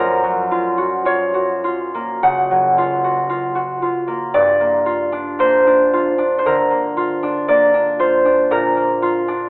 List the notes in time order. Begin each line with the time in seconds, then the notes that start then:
Already playing: F#2 F3 F4 A#4 C5
0.24 F#3
0.51 F4
0.77 F#4
1.05 F4 C#5
1.34 F#4
1.64 F4
1.94 A#3
2.23 C#3 F#5
2.51 F#3
2.78 F4
3.04 F#4
3.30 F4
3.55 F#4
3.82 F4
4.08 A#3
4.34 G2 D5
4.60 A#3
4.86 F4
5.12 D4
5.39 A#3 C5
5.67 D4
5.93 F4
6.18 D4
6.38 C5
6.45 D3 A#4
6.70 A#3
6.97 F4
7.23 D4
7.48 A#3 D5
7.74 D4
7.99 F4 C5
8.25 D4
8.51 A#2 A#4
8.77 A#3
9.02 F4
9.28 D4